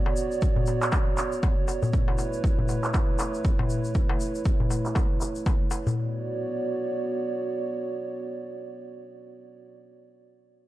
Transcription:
Already playing: analog synth pad B3 F#4 C#5 D5
0.06 darbuka ka
0.16 shaker
0.31 shaker
0.42 kick, shaker
0.56 darbuka dum
0.66 darbuka tek, shaker
0.82 clap, shaker
0.92 kick, clap, darbuka tek, shaker
1.17 clap, shaker
1.32 shaker
1.43 kick, darbuka tek, shaker
1.68 darbuka ka, shaker
1.83 darbuka dum, shaker
1.93 analog synth pad A3 E4 B4, kick, shaker
2.08 darbuka ka
2.18 darbuka tek, shaker
2.33 shaker
2.44 kick, shaker
2.59 darbuka dum
2.68 darbuka tek, shaker
2.83 clap, shaker
2.94 kick, clap, darbuka tek, shaker
3.19 clap, darbuka tek, shaker
3.34 shaker
3.44 kick, shaker
3.59 darbuka ka, darbuka tek, darbuka dum
3.70 shaker
3.84 shaker
3.94 kick, shaker
4.09 darbuka ka
4.20 shaker
4.35 shaker
4.45 kick, shaker
4.60 darbuka dum
4.70 darbuka tek, shaker
4.85 clap, shaker
4.95 kick, clap, darbuka tek, shaker
5.21 clap, shaker
5.35 shaker
5.46 kick, darbuka tek, shaker
5.71 darbuka ka, shaker
5.87 darbuka dum, shaker
5.97 analog synth pad B3 F#4 C#5 D5

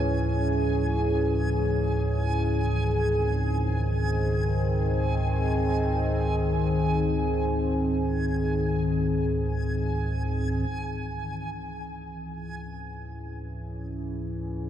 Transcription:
Already playing: synth drone C#2 G#2, analog synth pad E3 C#4 G#4, synth texture G#5
2.58 analog synth pad D#3
2.90 analog synth pad C4
10.69 synth drone C#2 G#2, analog synth pad E3
12.11 analog synth pad C#4

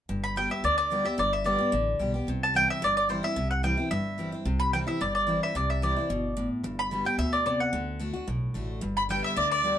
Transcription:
0.09 upright bass G1, steel-string acoustic guitar G2
0.24 mandolin B5
0.36 steel-string acoustic guitar D3 G3 B3 G4, mandolin G5
0.50 steel-string acoustic guitar B3 G4, mandolin E5
0.64 upright bass D2, steel-string acoustic guitar D3, mandolin D5
0.78 mandolin D5
0.90 steel-string acoustic guitar D3 G3 B3 G4
1.05 steel-string acoustic guitar B3 G4, mandolin E5
1.18 upright bass G1, steel-string acoustic guitar G2, mandolin D5
1.33 mandolin E5
1.44 steel-string acoustic guitar D3 G3 B3 G4, mandolin D5
1.58 steel-string acoustic guitar B3 G4
1.72 upright bass A1, steel-string acoustic guitar D3
1.99 upright bass B1, steel-string acoustic guitar D3 G3 B3 G4
2.14 steel-string acoustic guitar B3 G4
2.27 upright bass C2, steel-string acoustic guitar C3
2.43 mandolin A5
2.54 steel-string acoustic guitar E3 G3 C4 E4, mandolin G5
2.70 mandolin E5
2.82 upright bass G1, steel-string acoustic guitar G2, mandolin D5
2.97 mandolin D5
3.09 steel-string acoustic guitar E3 G3 C4 E4, mandolin C5
3.23 steel-string acoustic guitar C4 E4, mandolin E5
3.36 upright bass C2, steel-string acoustic guitar C3
3.51 mandolin F#5
3.63 steel-string acoustic guitar E3 G3 C4 E4, mandolin G5
3.77 steel-string acoustic guitar C4 E4
3.91 upright bass G1, steel-string acoustic guitar G2, mandolin E5
4.18 steel-string acoustic guitar E3 G3 C4 E4
4.32 steel-string acoustic guitar C4 E4
4.45 upright bass C2, steel-string acoustic guitar C3
4.60 mandolin B5
4.73 steel-string acoustic guitar E3 G3 C4 E4, mandolin G5
4.87 steel-string acoustic guitar C4 E4, mandolin E5
5.01 upright bass G1, steel-string acoustic guitar G2, mandolin D5
5.15 mandolin D5
5.27 steel-string acoustic guitar E3 G3 C4 E4
5.43 mandolin E5
5.55 upright bass C2, steel-string acoustic guitar C3, mandolin D5
5.70 mandolin E5
5.82 steel-string acoustic guitar E3 G3 C4 E4, mandolin D5
5.96 steel-string acoustic guitar C4 E4
6.10 upright bass G1, steel-string acoustic guitar B2
6.37 steel-string acoustic guitar A2
6.64 upright bass G1, steel-string acoustic guitar G2
6.79 mandolin B5
6.91 steel-string acoustic guitar D3 G3 B3 G4
7.05 steel-string acoustic guitar B3 G4, mandolin G5
7.18 upright bass D2, steel-string acoustic guitar B2, mandolin E5
7.33 mandolin D5
7.46 steel-string acoustic guitar C3, mandolin D5
7.60 mandolin F#5
7.73 upright bass D2, steel-string acoustic guitar D3
7.99 steel-string acoustic guitar D3 A3 D4 F#4
8.13 steel-string acoustic guitar D4 F#4
8.28 upright bass B1, steel-string acoustic guitar A2
8.54 upright bass A1, steel-string acoustic guitar D3 A3 D4 F#4
8.81 upright bass G1, steel-string acoustic guitar G2
8.97 mandolin B5, fiddle B5
9.09 steel-string acoustic guitar D3 G3 B3 G4, fiddle G5, mandolin G5
9.24 fiddle E5, mandolin E5
9.36 upright bass D2, steel-string acoustic guitar D3, mandolin D5, fiddle D5
9.51 fiddle D5, mandolin D5
9.63 steel-string acoustic guitar D3 G3 B3 G4

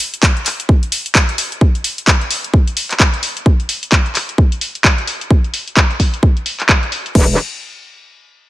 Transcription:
0.00 open hi-hat
0.14 closed hi-hat
0.23 kick, clap
0.37 closed hi-hat
0.46 clap, open hi-hat
0.60 closed hi-hat
0.69 kick
0.83 closed hi-hat
0.92 open hi-hat
1.06 closed hi-hat
1.15 kick, clap
1.29 closed hi-hat
1.38 open hi-hat
1.52 closed hi-hat
1.61 kick
1.75 closed hi-hat
1.84 open hi-hat
1.98 closed hi-hat
2.07 kick, clap
2.21 closed hi-hat
2.31 open hi-hat
2.44 closed hi-hat
2.54 kick
2.67 closed hi-hat
2.77 open hi-hat
2.91 clap, closed hi-hat
3.00 kick, clap
3.14 closed hi-hat
3.23 open hi-hat
3.37 closed hi-hat
3.46 kick
3.60 closed hi-hat
3.69 open hi-hat
3.83 closed hi-hat
3.92 kick, clap
4.06 closed hi-hat
4.15 clap, open hi-hat
4.29 closed hi-hat
4.38 kick
4.52 closed hi-hat
4.61 open hi-hat
4.75 closed hi-hat
4.84 kick, clap
4.98 closed hi-hat
5.07 open hi-hat
5.21 closed hi-hat
5.31 kick
5.44 closed hi-hat
5.54 open hi-hat
5.68 closed hi-hat
5.77 kick, clap
5.91 closed hi-hat
6.00 kick, open hi-hat
6.14 closed hi-hat
6.23 kick
6.37 closed hi-hat
6.46 open hi-hat
6.60 clap, closed hi-hat
6.69 kick, clap
6.83 closed hi-hat
6.92 open hi-hat
7.06 closed hi-hat
7.15 wobble bass E1, kick, crash

